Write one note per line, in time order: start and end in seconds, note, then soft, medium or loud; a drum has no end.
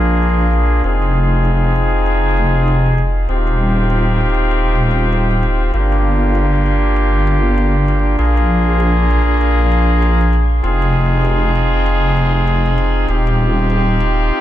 0.00 0.82 A#1 medium
0.00 0.81 A#3 medium
0.00 0.81 D4 medium
0.00 0.81 F4 medium
0.00 0.81 G#4 medium
0.23 closed hi-hat medium
0.41 closed hi-hat medium
0.53 closed hi-hat medium
0.84 3.27 F1 medium
0.84 3.12 C4 medium
0.84 3.12 D#4 medium
0.84 3.12 F4 medium
0.84 3.12 G#4 medium
0.84 closed hi-hat medium
1.02 closed hi-hat medium
1.45 closed hi-hat medium
1.76 closed hi-hat medium
2.06 closed hi-hat medium
2.37 closed hi-hat medium
2.68 closed hi-hat medium
2.86 closed hi-hat medium
2.98 closed hi-hat medium
3.29 5.71 D#1 medium
3.29 5.71 C4 medium
3.29 5.71 D#4 medium
3.29 5.71 F4 medium
3.29 5.71 G4 medium
3.29 closed hi-hat medium
3.47 closed hi-hat medium
3.90 closed hi-hat medium
4.21 closed hi-hat soft
4.26 closed hi-hat soft
4.30 closed hi-hat soft
4.35 closed hi-hat soft
4.51 closed hi-hat medium
4.91 closed hi-hat medium
5.13 closed hi-hat medium
5.31 closed hi-hat medium
5.43 closed hi-hat medium
5.74 8.16 G1 medium
5.74 8.16 A#3 medium
5.74 8.16 D4 medium
5.74 8.16 F4 medium
5.74 8.16 G4 medium
5.74 closed hi-hat medium
5.92 closed hi-hat medium
6.35 closed hi-hat medium
6.66 closed hi-hat medium
6.97 closed hi-hat medium
7.27 closed hi-hat medium
7.58 closed hi-hat medium
7.88 closed hi-hat medium
8.19 10.61 A#1 medium
8.19 10.47 A#3 medium
8.19 10.47 D4 medium
8.19 10.47 F4 medium
8.19 10.47 G#4 medium
8.19 closed hi-hat medium
8.37 closed hi-hat medium
8.80 closed hi-hat medium
9.11 closed hi-hat medium
9.41 closed hi-hat medium
9.72 closed hi-hat medium
10.03 closed hi-hat medium
10.21 closed hi-hat medium
10.33 closed hi-hat medium
10.64 13.06 F1 medium
10.64 13.06 C4 medium
10.64 13.06 D#4 medium
10.64 13.06 F4 medium
10.64 13.06 G#4 medium
10.64 closed hi-hat medium
10.82 closed hi-hat medium
11.25 closed hi-hat medium
11.55 closed hi-hat medium
11.86 closed hi-hat medium
12.17 closed hi-hat medium
12.48 closed hi-hat medium
12.66 closed hi-hat medium
12.78 closed hi-hat medium
13.09 14.31 D#1 medium
13.09 14.41 C4 medium
13.09 14.41 D#4 medium
13.09 14.41 F4 medium
13.09 14.41 G4 medium
13.09 closed hi-hat medium
13.27 closed hi-hat medium
13.70 closed hi-hat medium
14.00 closed hi-hat medium